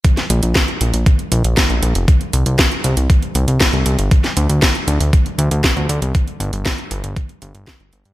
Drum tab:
HH |xxxxxxxxxxxxxxxx|xxxxxxxxxxxxxxxx|xxxxxxxxxxxxxxxx|xxxxxxxxxxxxxxxx|
SD |-o--o-------o---|----o-------o---|-o--o-------o---|----o-------o---|
BD |o---o---o---o---|o---o---o---o---|o---o---o---o---|o---o---o---o---|